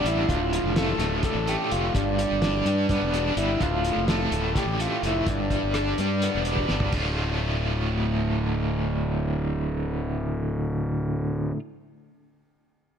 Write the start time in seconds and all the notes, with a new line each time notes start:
Already playing: B3 D4
0.04 A1 G3 E4, closed hi-hat
0.29 D1 D2 F4, kick, closed hi-hat
0.53 A2, closed hi-hat
0.64 F1
0.76 A3 A4, snare, closed hi-hat
0.99 D1 A2, snare, closed hi-hat
1.23 D3 A4, kick, closed hi-hat
1.35 A1
1.47 A3 G4, closed hi-hat
1.71 F1 A2 F4, closed hi-hat
1.94 G1 G2 D4, kick, closed hi-hat
2.18 G3, closed hi-hat
2.31 G1
2.42 D4, snare, closed hi-hat
2.66 G2 G3, closed hi-hat
2.89 B3 D4, kick, closed hi-hat
3.02 E1
3.14 D4, closed hi-hat
3.37 G1 G3 E4, closed hi-hat
3.61 D1 D2 F4, kick, closed hi-hat
3.84 A2, closed hi-hat
3.96 F1
4.08 A3 A4, snare, closed hi-hat
4.32 D1 A2, closed hi-hat
4.55 D3 G4, kick, snare, closed hi-hat
4.66 A1
4.79 A3 F4, closed hi-hat
5.03 F1 A2 E4, closed hi-hat
5.26 G1 G2 D4, kick, closed hi-hat
5.50 G3, kick, closed hi-hat
5.63 G1
5.74 D4, cross-stick, closed hi-hat
5.98 G2 G3, closed hi-hat
6.22 B3, closed hi-hat
6.35 E1
6.45 D4, closed hi-hat
6.57 kick
6.69 G1 G3, snare
6.80 floor tom
6.92 D1 D2 A2 D3, kick, ride
6.96 A3 F4